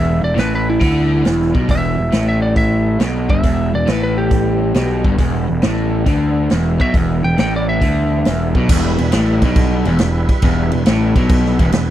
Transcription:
Already playing: E1 E2 G3 B3 E4 E5
0.22 E1 E2 D5
0.36 A1 A2 B4, snare, open hi-hat
0.55 B4
0.70 E4
0.80 D2 D3, kick, open hi-hat
1.24 E1 E2, snare, open hi-hat
1.42 snare
1.54 B1 B2, kick
1.68 E1 E2 E3 G3 B3 E5, kick, open hi-hat
1.98 E1 E2
2.12 A1 A2, snare, open hi-hat
2.29 E5
2.42 D5
2.56 E5, kick, open hi-hat
3.00 B1 B2, snare, open hi-hat
3.30 G1 G2 E5, kick
3.43 E1 E2, kick, open hi-hat
3.74 E1 E2 D5
3.87 A1 A2 B4, snare, open hi-hat
4.03 B4
4.18 G4
4.31 kick, open hi-hat
4.74 B1 B2, snare, open hi-hat
5.04 G1 G2, kick
5.18 E1 E2 E3 G3 B3, kick, open hi-hat
5.48 E1 E2
5.62 A1 A2, snare, open hi-hat
6.06 D2 D3, kick, open hi-hat
6.50 E1 E2, snare, open hi-hat
6.80 B1 B2 E5, kick
6.94 E1 E2, kick, open hi-hat
7.24 E1 E2 G5
7.38 A1 A2 G5, snare, open hi-hat
7.56 D5
7.69 E5
7.81 D2 D3, kick, open hi-hat
8.25 E1 E2, snare, open hi-hat
8.55 B1 B2, kick
8.69 E1 E2 G3 E4 B4, kick, crash
8.98 E1 E2, crash
9.12 A1 A2, snare, crash
9.42 B1 B2, kick, crash
9.56 kick, crash
9.85 E1 E2, crash
9.99 E1 E2, snare, crash
10.29 kick, crash
10.42 E1 E2, kick, crash
10.72 E1 E2, crash
10.86 A1 A2, snare, crash
11.15 B1 B2, kick, crash
11.29 kick, crash
11.46 snare
11.59 E1 E2, kick, crash
11.72 E1 E2, snare, crash

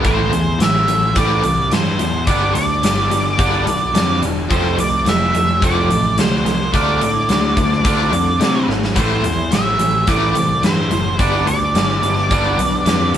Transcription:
0.04 A1 A2 E3 A3 C4 C5, kick, closed hi-hat
0.31 E2 A2 E3, closed hi-hat
0.59 A1 A2 E3 E5, snare, closed hi-hat
0.88 A1 A2 E3, closed hi-hat
1.15 A1 A2 E3 A3 C4 D5, kick, closed hi-hat
1.43 C2 A2 E3, closed hi-hat
1.72 G2 A2 E3 C5, snare, closed hi-hat
1.99 E2 A2 E3, closed hi-hat
2.27 G1 G2 D3 G3 B3 D4 D5, kick, closed hi-hat
2.55 D2 G2 D3 G3 D4 D5, closed hi-hat
2.82 G1 G2 D3 G3 D4, snare, closed hi-hat
3.10 G1 G2 D3 G3 D4, closed hi-hat
3.38 G1 G2 D3 G3 B3 D4, kick, closed hi-hat
3.66 B1 G2 D3 G3 D4, closed hi-hat
3.94 F2 G2 D3 G3 D4, snare, closed hi-hat
4.22 E1 G2 D3 G3 D4, closed hi-hat
4.49 F1 F2 C3 F3 A3 C4 C5, kick, closed hi-hat
4.77 C2 F2 C3 F3 A3 D5, closed hi-hat
5.05 F1 F2 C3 F3 A3 E5, snare, closed hi-hat
5.33 F1 F2 C3 F3 A3, closed hi-hat
5.61 F1 F2 C3 F3 A3 C4 D5, kick, closed hi-hat
5.90 A1 F2 C3 F3 A3, closed hi-hat
6.18 D2 F2 C3 F3 A3 C5, snare, closed hi-hat
6.45 C2 F2 C3 F3 A3, closed hi-hat
6.73 D2 D3 A3 D4 F4 D5, kick, closed hi-hat
7.01 A2 D3 A3 D4 D5, closed hi-hat
7.29 D2 D3 A3 D4, snare, closed hi-hat
7.57 D2 D3 A3 D4, kick, closed hi-hat
7.72 snare
7.84 D2 D3 A3 D4 F4, kick, closed hi-hat
8.12 F2 D3 A3 D4, closed hi-hat
8.40 C3 D3 A3 D4, snare, closed hi-hat
8.68 G#1 D3 A3 D4, snare
8.83 snare
8.95 A1 A2 E3 A3 C4 E4 C5, kick, closed hi-hat
9.23 E2 A2 E3, closed hi-hat
9.51 A1 A2 E3 E5, snare, closed hi-hat
9.79 A1 A2 E3, closed hi-hat
10.07 A1 A2 E3 A3 D5, kick, closed hi-hat
10.35 C2 A2 E3, closed hi-hat
10.63 G2 A2 E3 C5, snare, closed hi-hat
10.91 F#1 A2 E3, closed hi-hat
11.19 G1 G2 D3 G3 B3 D4 B4 D5, kick, closed hi-hat
11.47 D2 G2 D3 G3 D4 D5, closed hi-hat
11.75 G1 G2 D3 G3 D4, snare, closed hi-hat
12.02 G1 G2 D3 G3 D4, closed hi-hat
12.18 snare
12.30 G1 G2 D3 G3 B3 D4, kick, closed hi-hat
12.58 B1 G2 D3 G3 D4, closed hi-hat
12.86 F2 G2 D3 G3 D4, snare, closed hi-hat
13.14 G2 D3 G3, closed hi-hat

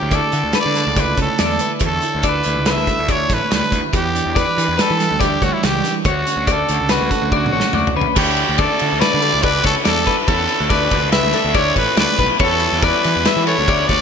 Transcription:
Already playing: D3 E4 G4 C#5
0.02 D2
0.11 E4 A4 D5, kick, snare, closed hi-hat
0.32 D3 E4, closed hi-hat
0.44 D2
0.53 A4 B4, snare, closed hi-hat
0.60 D5
0.66 D3
0.74 A3 A4, snare, closed hi-hat
0.87 C#2
0.96 E4 B4 D5, kick, closed hi-hat
1.17 C#2 A3 C#5, kick, closed hi-hat
1.22 A4
1.38 E2 D3 D5, snare, closed hi-hat
1.45 A4
1.59 E4 B4, closed hi-hat
1.79 E2 D3 C#5, kick, closed hi-hat
1.86 A4
2.02 E4, closed hi-hat
2.15 D2
2.22 A4 D5, kick, closed hi-hat
2.28 B4
2.44 D2 E4, closed hi-hat
2.56 C#2
2.66 A4 B4, snare, closed hi-hat
2.71 E5
2.77 D2
2.87 A3 A4, kick, closed hi-hat
2.99 D2
3.08 E4 C#5 D5, kick, closed hi-hat
3.29 A1 A3 B4 C#5, kick, snare, closed hi-hat
3.51 D2 D3 B4 D5, snare, closed hi-hat
3.72 D2 E4 B4, kick, closed hi-hat
3.92 E2 E3 G4 C#5, kick, closed hi-hat
4.15 D4, closed hi-hat
4.26 E2
4.34 E4 B4 D5, kick, snare, closed hi-hat
4.46 G4
4.57 E3 D4, closed hi-hat
4.68 E2
4.77 G4 B4, snare, closed hi-hat
4.81 A4
4.90 E3
4.98 G3 A4, snare, closed hi-hat
5.11 D2
5.20 D4 G4 D5, kick, closed hi-hat
5.41 D2 G3 F#4 C#5, kick, closed hi-hat
5.53 E4
5.61 C#2 E3 G4 D5, snare, closed hi-hat
5.84 D4 B4, snare, closed hi-hat
6.05 D2 D3 F#4 C#5, kick, closed hi-hat
6.27 C#4, closed hi-hat
6.37 D2
6.47 F#4 D5, kick, closed hi-hat
6.52 A4
6.68 D2 C#4, closed hi-hat
6.80 C#2
6.89 C#4 F#4 B4, snare, closed hi-hat
7.01 D2
7.11 A3 A4, kick, closed hi-hat
7.22 D2
7.32 C#4 F#4 D5, kick
7.46 high tom
7.53 A1 A3 C#5
7.60 snare
7.73 D2 D5, mid tom
7.87 floor tom
7.95 D2 C#4 B4
8.01 floor tom
8.16 D2 D3 A3 D4 E4 G4 C#5, kick, crash
8.37 ride
8.49 D2
8.58 A4 D5, kick, snare, ride
8.79 D3, ride
8.93 D2
9.01 B4 D5, snare, ride
9.14 D3
9.22 D3 A3 D4 E4 A4, ride
9.34 C#2
9.43 D3 A3 D4 B4 D5, kick, ride
9.47 E4
9.64 C#2 A4 C#5, kick, snare, ride
9.84 E2 A4 D5, snare, ride
10.07 B4, kick, ride
10.27 E2 D3 A3 D4 E4 A4 C#5, kick, ride
10.49 ride
10.60 D2
10.69 B4 D5, kick, snare, ride
10.91 D2, kick, ride
11.02 C#2
11.12 B4 E5, snare, ride
11.23 D2
11.33 D3 A3 D4 E4 A4, ride
11.45 D2
11.54 D3 A3 D4 E4 C#5 D5, kick, snare, ride
11.76 A1 B4 C#5, kick, ride
11.97 D2 B4 D5, snare, ride
12.19 B1 B4, kick, ride
12.39 E2 E3 G3 B3 E4 A4 C#5, kick, ride
12.60 ride
12.72 E2
12.82 B4 D5, kick, snare, ride
13.04 E3, snare, ride
13.16 E2
13.25 B4 E5, snare, ride
13.37 E3
13.45 E3 G3 B3 E4 A4 C#5, ride
13.59 D2
13.67 E3 G3 B3 E4 D5, kick, ride
13.88 D2 C#5 D5, kick, snare, ride

